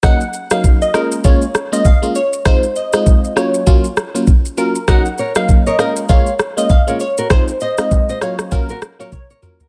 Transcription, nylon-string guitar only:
X:1
M:4/4
L:1/16
Q:"Swing 16ths" 1/4=99
K:Bbm
V:1 name="Nylon-string guitar"
z16 | z16 | [GB] z [Bd] z2 [Bd] [Be] z [df]2 z3 [Bd] z [GB] | [Ac] z [ce] z2 [ce] [df] z2 [GB] z [Bd] z [Bd] z [GB] |]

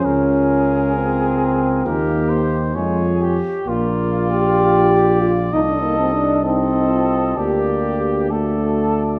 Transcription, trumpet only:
X:1
M:6/8
L:1/16
Q:3/8=65
K:Dblyd
V:1 name="Trumpet"
B12 | B3 c3 d4 z2 | [K:Bb] d12 | e6 e6 |
d6 d6 |]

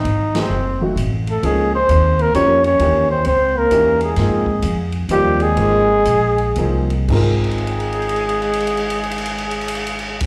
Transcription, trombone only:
X:1
M:3/4
L:1/8
Q:"Swing" 1/4=129
K:Ab
V:1 name="Trombone"
z4 z =A, | A, C2 B, D D- | D C C B,2 A,- | A,3 z G, A,- |
A,4- A, z | A,6- | A,6 |]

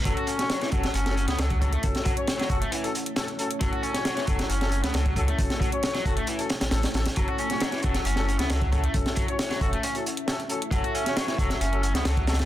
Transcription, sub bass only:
X:1
M:4/4
L:1/16
Q:1/4=135
K:F#m
V:1 name="Sub bass" clef=bass
F,,, z4 z F,,, z F,,,3 C,, C,,3 z | F,,, z4 z F,,, z8 z | F,,, z4 z F,,, z F,,,3 C,, C,,3 z | F,,, z4 z F,,, z4 A,,, A,,, z A,,, z |
F,,, z4 z F,,, z F,,,3 C,, C,,3 z | F,,, z4 z F,,, z8 z | F,,, z4 z F,,, z F,,,3 C,, C,,3 z |]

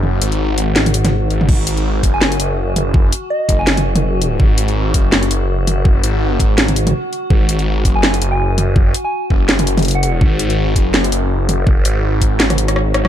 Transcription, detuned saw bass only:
X:1
M:4/4
L:1/8
Q:"Swing 16ths" 1/4=165
K:F#mix
V:1 name="Detuned saw bass" clef=bass
F,,, G,,,6 G,,, | G,,,3 F,,,2 F,,,3- | F,,, z2 F,,,2 F,,,3 | G,,,3 F,,,2 F,,,3- |
F,,, G,,,2 G,,,3 z2 | G,,,3 F,,,2 F,,,3- | F,,, z2 F,,,2 F,,,3 | G,,,3 F,,,2 F,,,3- |
F,,, G,,,6 G,,, |]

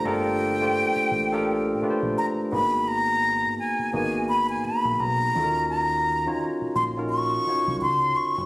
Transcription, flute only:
X:1
M:4/4
L:1/16
Q:"Swing 16ths" 1/4=85
K:Ebmix
V:1 name="Flute"
g8- g2 z2 b2 _c'2 | b4 a2 a2 _c' a c'2 b4 | b4 z2 c'2 d'4 c'2 d'2 |]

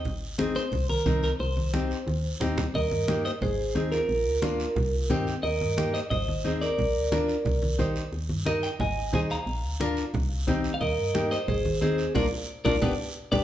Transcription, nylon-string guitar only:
X:1
M:4/4
L:1/8
Q:1/4=178
K:Ablyd
V:1 name="Nylon-string guitar"
z2 [CEA] z3 [CEB] z | z2 [CEG] z3 [CEG] z | z2 [B,EG] z3 [CEA] z | z2 [B,DF] z3 [CEG] z |
z2 [B,EG] z3 [CEA] z | z2 [DFB] z3 [EGc] z | z2 [EGB] z3 [EAc] z | z2 [DFB] z3 [CEG] z |
z2 [B,EG] z3 [CEA] z | [B,DF] z2 [B,DF] [=B,DG] z2 [B,DG] |]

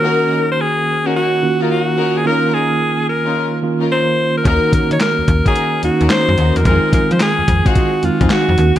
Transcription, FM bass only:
X:1
M:4/4
L:1/16
Q:"Swing 16ths" 1/4=109
K:Ebdor
V:1 name="FM bass" clef=bass
z16 | z16 | E,, z E, E, z E,, E,, z3 E,, E,, z G,, E,, _F,, | F,, z F, F, z F,, F,, z3 F,, F,, z F,, E,, z |]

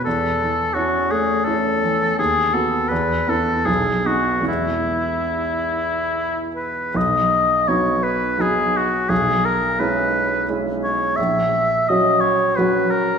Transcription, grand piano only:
X:1
M:3/4
L:1/8
Q:1/4=84
K:E
V:1 name="Grand piano"
E,, E, [CE] A, [CE] E, | D,, [B,F] E,, [B,E] B,,, [B,D] | [E,,G,B,E]6 | [K:B] B,,,2 [F,B,D]2 [F,B,D]2 |
B,,,2 [G,CE]2 [G,CE]2 | A,,,2 [F,CF]2 [F,CF]2 |]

